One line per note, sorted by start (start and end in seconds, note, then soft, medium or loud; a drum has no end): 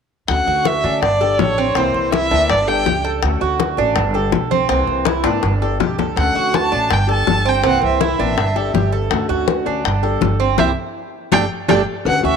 0.28 0.46 D2 medium
0.28 0.83 D3 medium
0.28 0.84 A3 medium
0.28 0.84 C#4 medium
0.28 0.83 F#4 medium
0.28 0.68 F#5 medium
0.28 high bongo medium
0.28 high conga soft
0.46 0.82 D2 medium
0.46 0.83 F#4 medium
0.46 high bongo soft
0.46 high conga soft
0.65 1.03 E5 medium
0.65 high bongo medium
0.65 high conga medium
0.84 1.01 D3 medium
0.84 1.03 A3 medium
0.84 1.02 C#4 medium
0.84 1.20 D4 medium
0.84 1.02 F#4 medium
0.84 high bongo soft
0.84 high conga soft
1.02 1.37 G1 medium
1.02 1.42 D5 medium
1.02 muted nylon-string guitar stroke medium
1.02 high bongo medium
1.02 high conga soft
1.21 1.40 G3 medium
1.21 1.39 D4 medium
1.21 1.39 G4 medium
1.21 1.57 A4 medium
1.21 high bongo soft
1.21 high conga soft
1.39 1.74 A1 medium
1.39 1.76 D3 soft
1.39 1.76 G3 soft
1.39 1.77 D4 medium
1.39 1.77 G4 medium
1.39 1.78 C#5 medium
1.39 high bongo soft
1.39 low bongo medium
1.39 high conga medium
1.58 1.75 C4 medium
1.75 1.93 C2 medium
1.75 2.31 C3 medium
1.75 2.31 E3 medium
1.75 2.31 A#3 medium
1.75 2.12 C4 medium
1.75 2.31 C4 medium
1.75 2.30 E4 medium
1.75 2.12 C5 medium
1.75 high bongo medium
1.75 high conga soft
1.94 2.29 C2 medium
1.94 high bongo soft
1.94 high conga soft
2.12 2.31 E4 medium
2.12 2.51 E5 loud
2.12 high bongo medium
2.12 high conga medium
2.31 2.49 D2 medium
2.31 2.50 E3 medium
2.31 2.50 A#3 medium
2.31 2.50 C4 medium
2.31 2.67 D4 medium
2.31 2.49 E4 medium
2.31 high bongo soft
2.49 2.85 G1 loud
2.49 2.70 D5 loud
2.49 muted nylon-string guitar stroke medium
2.49 high bongo medium
2.49 high conga soft
2.67 2.86 G3 soft
2.67 2.86 D4 medium
2.67 2.86 G4 medium
2.67 2.86 A4 medium
2.67 3.05 G5 medium
2.67 high bongo soft
2.67 high conga soft
2.86 3.22 C#2 medium
2.86 3.23 G3 soft
2.86 3.23 D4 soft
2.86 3.04 G4 medium
2.86 3.23 G4 soft
2.86 high bongo soft
2.86 low bongo medium
2.86 high conga medium
3.04 3.40 A4 medium
3.22 3.41 D2 loud
3.22 3.77 D3 medium
3.22 3.78 A3 medium
3.22 3.78 C#4 medium
3.22 3.77 F#4 medium
3.22 high bongo medium
3.22 high conga soft
3.41 3.76 D2 medium
3.41 3.77 F#4 medium
3.41 high bongo soft
3.41 high conga soft
3.60 high bongo medium
3.60 high conga medium
3.77 3.95 A1 medium
3.77 3.96 A3 medium
3.77 3.96 C#4 medium
3.77 4.14 D4 medium
3.77 3.96 F#4 medium
3.77 high bongo soft
3.77 high conga soft
3.96 4.31 G1 loud
3.96 muted nylon-string guitar stroke medium
3.96 high bongo medium
3.96 high conga soft
4.14 4.33 G3 medium
4.14 4.33 D4 soft
4.14 4.33 G4 medium
4.14 4.51 A4 medium
4.14 high bongo soft
4.14 high conga soft
4.32 4.68 B1 medium
4.32 4.70 D3 soft
4.32 4.70 G3 medium
4.32 4.70 D4 soft
4.32 4.70 G4 medium
4.32 high bongo soft
4.32 low bongo medium
4.32 high conga medium
4.51 4.68 C4 medium
4.51 high conga medium
4.69 4.87 C2 medium
4.69 5.24 C3 medium
4.69 5.25 E3 medium
4.69 5.25 A#3 medium
4.69 5.05 C4 medium
4.69 5.25 C4 medium
4.69 5.24 E4 medium
4.69 high bongo medium
4.69 high conga soft
4.87 5.23 C2 medium
4.87 high bongo soft
4.87 high conga soft
5.05 5.25 E4 medium
5.05 high bongo medium
5.05 high conga medium
5.24 5.42 G#1 medium
5.24 5.43 E3 medium
5.24 5.43 A#3 medium
5.24 5.43 C4 medium
5.24 5.60 D4 medium
5.24 5.43 E4 medium
5.24 high bongo medium
5.43 5.78 G1 loud
5.43 muted nylon-string guitar stroke medium
5.43 high bongo medium
5.43 high conga soft
5.62 5.80 G3 soft
5.62 5.80 D4 medium
5.62 5.80 G4 medium
5.62 5.80 A4 medium
5.62 high conga soft
5.80 5.97 B1 medium
5.80 6.16 D3 soft
5.80 6.17 G3 soft
5.80 6.17 D4 soft
5.80 5.98 G4 medium
5.80 6.17 G4 soft
5.80 low bongo medium
5.80 high conga medium
5.98 6.15 C#2 medium
5.98 6.34 A4 medium
5.98 low bongo medium
5.98 high conga medium
6.17 6.34 D2 loud
6.17 6.72 D3 medium
6.17 6.72 A3 medium
6.17 6.72 C#4 medium
6.17 6.71 F#4 medium
6.17 6.57 F#5 medium
6.17 high bongo medium
6.17 high conga soft
6.35 6.70 D2 medium
6.35 6.71 F#4 medium
6.35 high bongo soft
6.35 high conga soft
6.54 6.94 A5 loud
6.54 high bongo medium
6.54 high conga medium
6.72 6.90 A1 medium
6.72 6.91 A3 medium
6.72 6.91 C#4 medium
6.72 7.08 D4 medium
6.72 6.90 F#4 medium
6.72 high bongo soft
6.72 high conga soft
6.90 7.26 G1 loud
6.90 7.10 G5 medium
6.90 muted nylon-string guitar stroke medium
6.90 high bongo medium
6.90 high conga soft
7.07 7.26 G3 soft
7.07 7.26 D4 medium
7.07 7.26 G4 medium
7.07 7.44 A4 medium
7.07 7.51 A5 loud
7.07 high bongo soft
7.07 high conga soft
7.27 7.62 G1 medium
7.27 7.63 D3 soft
7.27 7.63 G3 soft
7.27 7.64 D4 medium
7.27 7.64 G4 soft
7.27 high bongo soft
7.27 low bongo medium
7.27 high conga medium
7.45 7.62 C4 medium
7.45 7.66 G5 medium
7.63 7.81 C2 medium
7.63 8.19 C3 medium
7.63 8.19 E3 medium
7.63 8.18 A#3 medium
7.63 7.99 C4 medium
7.63 8.18 C4 medium
7.63 8.17 E4 medium
7.63 7.83 F#5 medium
7.63 high bongo medium
7.63 high conga soft
7.82 8.17 C2 medium
7.82 8.90 E5 medium
7.82 high bongo soft
7.82 high conga soft
8.01 8.19 E4 medium
8.01 high bongo medium
8.01 high conga medium
8.19 8.37 A1 medium
8.19 8.37 E3 medium
8.19 8.37 A#3 medium
8.19 8.37 C4 medium
8.19 8.55 D4 medium
8.19 8.37 E4 medium
8.19 high bongo soft
8.37 8.72 G1 loud
8.37 muted nylon-string guitar stroke medium
8.37 high bongo medium
8.37 high conga soft
8.56 8.73 G3 medium
8.56 8.74 D4 medium
8.56 8.74 G4 medium
8.56 8.74 A4 medium
8.56 high bongo soft
8.56 high conga soft
8.73 9.09 G1 medium
8.73 9.09 D3 soft
8.73 9.10 G3 soft
8.73 9.11 D4 soft
8.73 8.92 G4 medium
8.73 9.11 G4 medium
8.73 high bongo soft
8.73 low bongo medium
8.73 high conga medium
8.92 9.28 A4 medium
9.10 9.29 D2 loud
9.10 9.65 D3 medium
9.10 9.65 A3 medium
9.10 9.65 C#4 medium
9.10 9.64 F#4 medium
9.10 high bongo medium
9.10 high conga soft
9.29 9.64 D2 medium
9.29 9.65 F#4 medium
9.29 high bongo soft
9.29 high conga soft
9.48 high bongo medium
9.48 high conga medium
9.66 9.84 D2 medium
9.66 9.84 A3 medium
9.66 9.84 C#4 medium
9.66 10.02 D4 medium
9.66 9.84 F#4 medium
9.66 high bongo soft
9.66 high conga soft
9.85 10.20 G1 loud
9.85 muted nylon-string guitar stroke medium
9.85 high bongo medium
9.85 high conga soft
10.03 10.21 G3 medium
10.03 10.21 D4 medium
10.03 10.21 G4 medium
10.03 10.39 A4 medium
10.03 high bongo soft
10.03 high conga soft
10.21 10.57 G1 medium
10.21 10.58 D3 soft
10.21 10.57 G3 soft
10.21 10.58 D4 medium
10.21 10.58 G4 medium
10.21 high bongo soft
10.21 low bongo medium
10.21 high conga medium
10.40 10.57 C4 medium
10.58 10.72 C2 medium
10.58 10.70 A#3 medium
10.58 10.70 C4 medium
10.58 10.70 C4 loud
10.58 10.70 E4 medium
10.58 10.70 G4 medium
10.58 10.70 E5 medium
10.58 low bongo medium
10.58 high conga medium
11.32 11.46 G1 medium
11.32 11.44 G3 medium
11.32 11.44 A3 medium
11.32 11.44 A3 loud
11.32 11.44 D4 medium
11.32 11.44 D4 loud
11.32 11.44 G4 medium
11.32 11.44 G5 medium
11.32 low bongo medium
11.32 high conga loud
11.68 11.82 G1 loud
11.68 11.81 G3 medium
11.68 11.81 A3 medium
11.68 11.81 D4 medium
11.68 11.81 D4 loud
11.68 11.81 G4 medium
11.68 11.81 G5 medium
11.68 low bongo loud
11.68 high conga medium
12.05 12.23 D2 loud
12.05 12.23 D3 medium
12.05 12.24 A3 medium
12.05 12.23 C#4 medium
12.05 12.22 F#4 medium
12.05 12.24 F#5 medium
12.05 cowbell medium
12.05 high conga soft
12.23 12.37 D2 medium
12.23 12.37 A3 medium
12.23 12.37 C#4 medium
12.23 12.37 F#4 medium
12.23 12.37 E5 medium
12.23 high conga soft